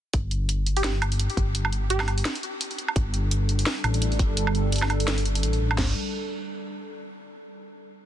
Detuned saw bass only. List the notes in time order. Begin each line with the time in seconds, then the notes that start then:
0.14 G1
0.84 G1
1.37 G1
1.55 G1
2.96 G1
3.84 A1
4.19 G1
4.37 G1
5.08 G1
5.43 A1
5.60 A1
5.78 G1